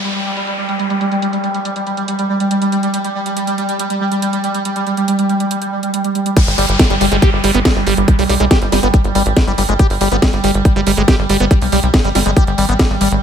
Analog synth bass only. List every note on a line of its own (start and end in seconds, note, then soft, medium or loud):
6.47 6.55 G1 medium
6.58 6.66 G1 loud
6.69 6.76 G1 medium
6.90 6.98 G1 medium
7.01 7.09 G1 loud
7.12 7.19 G1 medium
7.33 7.41 G1 medium
7.44 7.51 G1 loud
7.54 7.62 G1 loud
7.76 7.84 G1 medium
7.87 7.94 G1 loud
7.97 8.05 G1 loud
8.19 8.26 B1 medium
8.29 8.37 B1 loud
8.40 8.48 B1 medium
8.62 8.69 G1 medium
8.72 8.80 G1 loud
8.83 8.91 G1 medium
9.04 9.12 G1 medium
9.15 9.23 G#1 loud
9.26 9.34 G#1 loud
9.47 9.55 G1 medium
9.58 9.66 G1 loud
9.69 9.76 G1 medium
9.90 9.98 G1 medium
10.01 10.09 G1 loud
10.12 10.19 G1 medium
10.33 10.41 G1 medium
10.44 10.51 G1 loud
10.54 10.62 G1 medium
10.76 10.84 G1 medium
10.87 10.94 G1 loud
10.97 11.05 G1 loud
11.19 11.26 G1 medium
11.29 11.37 G1 loud
11.40 11.48 G1 medium
11.62 11.69 B1 medium
11.72 11.80 B1 loud
11.83 11.91 B1 medium
12.04 12.12 G1 medium
12.15 12.23 G1 loud
12.26 12.34 G1 medium
12.47 12.55 G1 medium
12.58 12.66 G#1 loud
12.69 12.76 G#1 loud
12.90 12.98 G#1 medium
13.01 13.09 G#1 medium
13.12 13.19 G#1 medium